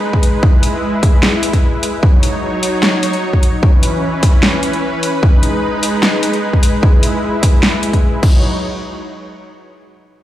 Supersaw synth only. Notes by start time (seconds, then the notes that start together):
Already playing: G#3 D#4 B4
0.43 E4
2.03 F#3 D#4 C#5
3.63 E3 C#4 B4
5.23 G#3 D#4
6.83 E4
8.23 F#3 D#4 C#5